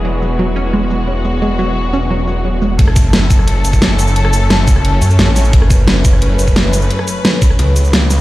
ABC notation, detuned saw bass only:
X:1
M:4/4
L:1/8
Q:1/4=175
K:F#m
V:1 name="Detuned saw bass" clef=bass
E,,,8- | E,,,8 | F,,,4- F,,, F,,,3 | F,,,4- F,,, F,, A,,,2 |
F,,,4- F,,, F,,,3 | z4 C,,4 |]